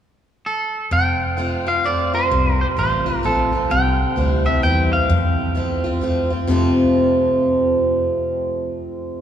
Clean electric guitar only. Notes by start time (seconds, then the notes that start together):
0.46 A4
0.93 G5
1.68 F5
1.86 D5
2.15 C5
2.61 C5
2.79 C5
3.26 A4
3.71 G5
4.46 E5
4.63 G5
4.93 F5